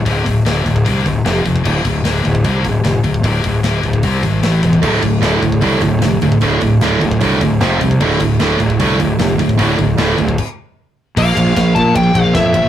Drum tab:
CC |----------------|x---------------|----------------|x---------------|
RD |----------------|----------------|----------------|----------------|
HH |o-o-o-o-o-o-o-o-|--o-o-o-o-o-o-o-|o-o-o-o-o-o-o-o-|--o-o-o-o-o-o-o-|
SD |----o-------o---|----o-------o---|----o-------o---|----o-------o---|
BD |o-o---ooo-o---oo|o-o---ooo-o---oo|o-o---ooo-o---oo|o-o---ooo-o---oo|

CC |----------------|x---------------|--------x-------|x---------------|
RD |----------------|----------------|----------------|--x-x-x-x-x-x-x-|
HH |o-o-o-o-o-o-o-o-|--o-o-o-o-o-o-o-|o-o-o-o---------|----------------|
SD |----o-------o---|----o-------o---|----o-----------|----o-------o---|
BD |o-o---ooo-o---oo|o-o---ooo-o---oo|o-o---ooo-------|o-o-o-o-o-o-o-o-|